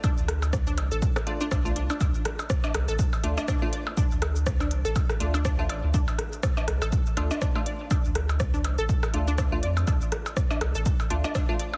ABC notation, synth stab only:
X:1
M:4/4
L:1/16
Q:"Swing 16ths" 1/4=122
K:Dm
V:1 name="Synth stab"
z8 z2 [A,DF] [A,DF] z [A,DF] z2 | z8 z2 [A,DF] z2 [A,DF] z2 | z8 z2 [A,DF] z2 [A,DF] z2 | z8 z2 [A,DF] z2 [A,DF] z2 |
z8 z2 [A,DF] z2 [A,DF] z2 | z8 z2 [A,DF] z2 [A,DF] z2 |]